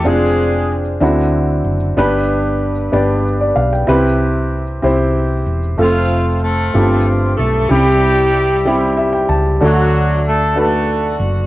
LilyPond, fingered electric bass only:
\new Staff \with { instrumentName = "Fingered electric bass" } { \clef bass \time 6/8 \key c \major \tempo 4. = 63 f,,4. d,4 fis,,8 | g,,4. g,,4 b,,8 | c,4. c,4 e,,8 | f,,4. g,,4 b,,8 |
c,2~ c,8 des,8 | d,2~ d,8 fis,,8 | }